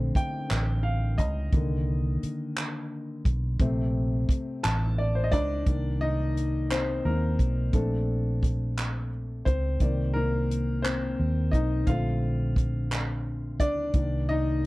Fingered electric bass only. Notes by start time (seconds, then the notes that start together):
Already playing: A#1
0.51 A1
1.19 C#2
1.53 C2
2.23 muted fingered electric bass stroke
3.26 B1
3.60 A#1
4.65 A1
5.33 C#2
5.67 C2
7.05 D#2
7.40 B1
7.74 A#1
9.47 C#2
9.81 C2
11.19 D#2
11.54 B1
11.88 A#1
13.60 C#2
13.94 C2